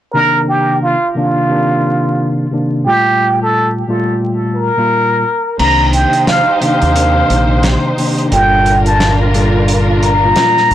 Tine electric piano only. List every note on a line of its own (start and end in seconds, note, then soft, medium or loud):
0.13 0.94 C3 medium
0.13 0.94 D#3 medium
0.13 0.95 A#3 medium
0.13 0.95 D4 loud
1.15 1.47 C3 medium
1.15 1.48 D#3 medium
1.15 1.48 A#3 medium
1.15 1.49 D4 loud
1.49 2.45 C3 medium
1.49 2.46 D#3 medium
1.49 2.46 A#3 medium
1.49 2.47 D4 medium
2.51 2.84 C3 medium
2.51 2.84 D#3 medium
2.51 2.85 A#3 medium
2.51 2.85 D4 medium
2.86 3.82 A#2 medium
2.86 3.82 G3 medium
2.86 3.83 A3 medium
2.86 3.83 F4 loud
3.88 4.69 A#2 medium
3.88 4.69 G3 medium
3.88 4.70 A3 medium
3.88 4.70 F4 medium
4.77 5.22 A#2 medium
4.77 5.22 G3 medium
4.77 5.22 A#3 medium
4.77 5.23 F4 loud
5.58 6.39 C3 medium
5.58 6.40 D#3 medium
5.58 6.40 A#3 medium
5.58 6.41 D4 loud
6.61 6.93 C3 medium
6.61 6.93 D#3 medium
6.61 6.94 A#3 medium
6.61 6.94 D4 loud
6.94 7.91 C3 loud
6.94 7.91 D#3 medium
6.94 7.92 A#3 medium
6.94 7.92 D4 loud
7.97 8.29 C3 medium
7.97 8.30 D#3 medium
7.97 8.30 A#3 medium
7.97 8.31 D4 medium
8.31 9.27 A#2 loud
8.31 9.28 G3 medium
8.31 9.29 F4 loud
8.31 9.28 A4 medium
9.33 10.14 A#2 medium
9.33 10.15 G3 medium
9.33 10.15 F4 loud
9.33 10.15 A4 medium
10.22 10.67 A#2 loud
10.22 10.67 G3 medium
10.22 10.68 A#3 medium
10.22 10.68 F4 loud